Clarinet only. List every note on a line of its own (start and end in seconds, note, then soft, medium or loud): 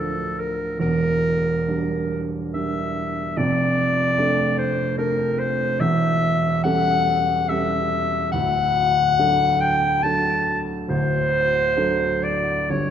0.00 0.41 A4 medium
0.39 0.80 A#4 medium
0.81 2.23 A#4 loud
2.54 3.39 E5 medium
3.37 4.59 D5 loud
4.58 4.97 C5 medium
4.98 5.40 A#4 medium
5.39 5.82 C5 loud
5.80 6.63 E5 loud
6.64 7.50 F#5 loud
7.49 8.31 E5 loud
8.32 9.62 F#5 loud
9.61 10.04 G5 loud
10.03 10.60 A5 loud
10.89 12.25 C5 loud
12.23 12.72 D5 medium
12.70 12.90 C#5 medium